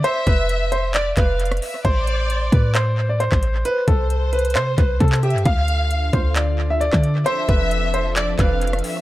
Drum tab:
HH |x-----------x-----------x-----------x-----------x-----------x-----------x--x--x--x--o-----------|x-----------x-----------x-----------x-----------x-----------------------x-----------x-----------|x-----------x-----------x-----------x--x--x--x--x-----------x-----------x---x---x---x---x---x---|x-----------x-----------x-----------x-----------x-----------------------x-----------x-----------|
CP |------------------------------------------------x-----------x-----------------------------------|------------------------------------------------x-----------------------------x-----------------|------------------------------------------------x-----------------------------x-----------------|------------------------------------------------x-----------------------------x-----------------|
SD |------------------------------------------------------------------------------r-----------------|------------------------------------------------------------------------------r-----------------|------------------------------------------------------------------------------------------------|------------------------------------------------------------------------------r-----------------|
BD |------------o-----------------------------------------------o-----------------------------------|o-----------------------------------o-----------------------------------------o-----------------|------------o-----------------------------------------------o-----------o-----------------------|o-----------------------------------o-----------------------------------------o-----------------|

HH |x-----------x-----------x-----------x-----------x-----------x-----------x--x--x--x--o-----------|
CP |------------------------------------------------x-----------x-----------------------------------|
SD |------------------------------------------------------------------------------r-----------------|
BD |------------o-----------------------------------------------o-----------------------------------|